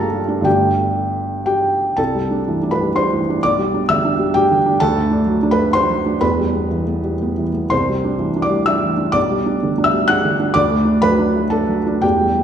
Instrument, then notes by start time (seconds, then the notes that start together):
felt piano
Already playing: G1 G2 D3 G3 A#3 D4 F4 A4 A#4 F5 A5 A#5
0.11 G3
0.28 D4
0.41 G2 D3 A3 D4 G5
0.45 G1 G4
1.46 G4 G5
1.97 C2 A4 A5
2.15 G3
2.31 D4
2.48 E3
2.63 D4
2.71 B4 B5
2.81 G3
2.96 D4 C5 C6
3.13 E3
3.30 D4
3.43 B1 D5 D6
3.58 G3
3.74 D4
3.89 D3 E5 E6
4.05 D4
4.19 G3
4.34 D4 G4 G5
4.51 D3
4.66 D4
4.80 D2 A4 A5
4.96 A3
5.11 D4
5.27 F#3
5.43 D4
5.51 B4 B5
5.73 D4 C5 C6
5.90 F#3
6.06 D4
6.21 E1 E2 B4 B5
6.39 G3
6.55 B3
6.71 E3
6.88 B3
7.04 G3
7.22 B3
7.38 E3
7.54 B3
7.70 C2 C5 C6
7.89 G3
8.04 D4
8.19 E3
8.36 D4
8.42 D5 D6
8.50 G3
8.66 D4 E5 E6
8.81 E3
8.97 D4
9.12 B1 D5 D6
9.30 G3
9.46 D4
9.63 D3
9.78 D4
9.84 E5 E6
9.93 G3
10.08 D4 F#5 F#6
10.25 D3
10.40 D4
10.54 D2 D5 D6
10.70 A3
10.85 D4
11.02 F#3 B4 B5
11.19 D4
11.35 A3
11.50 D4 A4 A5
11.68 F#3
11.87 D4
12.02 E1 E2 G4 G5
12.21 G3
12.39 B3